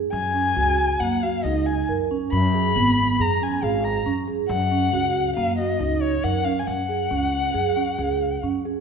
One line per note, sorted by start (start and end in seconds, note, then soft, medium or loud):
0.13 0.51 F#2 medium
0.13 1.01 G#5 medium
0.34 0.51 C#4 soft
0.56 0.95 C#2 medium
0.56 0.91 F#4 medium
1.00 1.38 F#2 medium
1.00 1.18 A#3 medium
1.00 1.24 F#5 medium
1.23 1.40 F#4 medium
1.23 1.45 F5 medium
1.44 1.82 C#2 medium
1.44 1.79 D#4 medium
1.44 1.67 D#5 medium
1.66 1.88 G#5 medium
1.89 2.26 F#2 medium
1.89 2.06 A#4 medium
2.11 2.45 C#4 medium
2.32 2.70 F#2 medium
2.32 3.22 B5 medium
2.54 2.71 G#4 medium
2.76 3.14 G#1 medium
2.76 3.10 B3 medium
3.19 3.57 F#2 medium
3.19 3.36 G#4 medium
3.19 3.45 A#5 medium
3.42 3.58 C#4 medium
3.42 3.66 G#5 medium
3.63 4.00 G#1 medium
3.63 3.97 G#4 medium
3.63 3.86 F5 medium
3.84 4.06 A#5 medium
4.06 4.44 F#2 medium
4.06 4.23 C#4 medium
4.27 4.45 G#4 medium
4.49 4.87 F#2 loud
4.49 5.32 F#5 medium
4.71 4.88 C#4 medium
4.93 5.31 C#2 medium
4.93 5.27 F#4 medium
5.36 5.74 F#2 medium
5.36 5.53 A#3 medium
5.36 5.57 F5 medium
5.58 5.75 F#4 medium
5.58 6.03 D#5 medium
5.79 6.18 C#2 medium
5.79 6.13 D#4 medium
6.02 6.25 C#5 medium
6.23 6.61 F#2 medium
6.23 6.40 A#4 medium
6.23 6.46 F#5 medium
6.45 6.79 C#4 medium
6.45 6.61 F5 medium
6.59 6.68 G#5 soft
6.67 7.05 F#2 medium
6.67 8.43 F#5 medium
6.89 7.06 G#4 medium
7.11 7.48 C#2 medium
7.11 7.45 C#4 medium
7.54 7.93 F#2 medium
7.54 7.71 G#4 medium
7.76 7.94 C#4 soft
7.98 8.37 C#2 medium
7.98 8.33 G#4 medium
8.43 8.80 F#2 medium
8.43 8.61 C#4 medium
8.65 8.80 G#4 medium